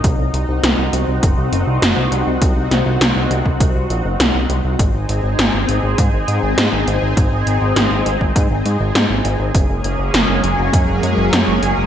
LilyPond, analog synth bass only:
\new Staff \with { instrumentName = "Analog synth bass" } { \clef bass \time 4/4 \key aes \mixolydian \tempo 4 = 101 c,16 c,16 c,16 c,16 c,16 c,16 c,16 c,16 ges,,16 c,16 ges,,16 c,16 ges,,16 c,16 c,16 c,16 | c,16 c,16 c,16 c,16 c,16 c,16 c,16 c,16 c,16 c,16 bes,,16 ges,,16 c,16 c,16 c,16 c,16 | aes,,16 aes,,16 aes,,16 aes,,16 aes,,16 aes,,16 aes,,16 aes,,16 aes,16 aes,,16 aes,16 aes,,16 aes,16 aes,,16 aes,,16 aes,,16 | aes,,16 aes,,16 aes,,16 aes,,16 aes,,16 aes,,16 aes,,16 aes,,16 aes,16 aes,,16 aes,16 aes,,16 aes,16 aes,,16 aes,,16 aes,,16 |
ges,,16 ges,,16 ges,,16 ges,,16 ges,,16 ges,,16 ges,,16 ges,,16 ges,16 ges,,16 ges,16 ges,,16 ges,16 ges,,16 ges,,16 ges,,16 | }